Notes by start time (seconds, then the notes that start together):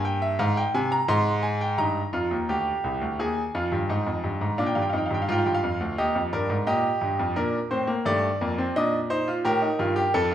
Already playing: G2 A#3
0.05 G5
0.22 E5
0.39 G#2 F5
0.57 G5
0.74 C3 G#5
0.92 A#5
1.08 G#2 G#3 C6
1.43 G#5
1.61 G5
1.78 G2 D#4 A#5
2.13 F2 F4
2.31 D#2
2.49 D2 G4
2.84 C2
3.01 D2
3.19 D#2 G#4 G#5
3.54 F2 F4
3.72 G2
3.90 G#2 D#4
4.06 F2
4.24 G2
4.41 G#2
4.58 A#2 D4 F5
4.66 G5
4.75 G2 F5
4.82 G5
4.89 F2 D#4 F5
4.97 G5
5.06 F5
5.11 G2 G5
5.22 F5
5.28 G#2 F4 G5
5.38 F5
5.46 G2 G5
5.54 F5
5.63 F2
5.80 D2
5.98 D#2 G4 D#5
6.15 F2
6.33 G2 A#4 D5
6.50 G#2
6.67 A#2 G4 D#5
7.01 G2
7.19 F2
7.36 A#2 D4 A#4
7.71 A2 C4 C5
7.87 A#3
8.05 G2 A3 D5
8.41 F2 A#3
8.58 C4
8.76 A#2 D4 D#5
9.10 D#4 C5
9.28 F4
9.45 A2 G4 A#4
9.62 D#4
9.79 G2 F4
9.96 G4
10.14 F2 A4
10.31 F4